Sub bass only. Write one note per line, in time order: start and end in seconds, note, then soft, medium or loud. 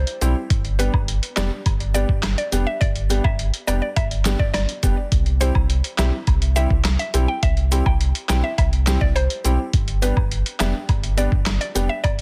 0.21 0.35 B1 medium
0.50 0.90 G1 loud
0.94 1.20 G1 loud
1.37 1.50 F1 medium
1.66 2.05 G1 loud
2.09 2.35 G1 medium
2.52 2.65 F1 medium
2.81 3.21 G1 loud
3.25 3.51 G1 loud
3.68 3.81 F1 medium
3.97 4.36 G1 loud
4.40 4.66 G1 medium
4.83 4.96 F1 loud
5.12 5.51 C2 loud
5.55 5.81 C2 loud
5.98 6.11 B1 medium
6.27 6.67 C2 loud
6.70 6.97 C2 medium
7.14 7.27 B1 loud
7.43 7.82 C2 loud
7.86 8.12 C2 loud
8.29 8.42 B1 loud
8.58 8.98 C2 loud
9.01 9.28 C2 medium
9.45 9.58 B1 medium
9.74 10.13 G1 loud
10.17 10.43 G1 loud
10.60 10.73 F1 loud
10.89 11.28 G1 loud
11.32 11.58 G1 medium
11.75 11.88 F1 loud
12.04 12.21 G1 loud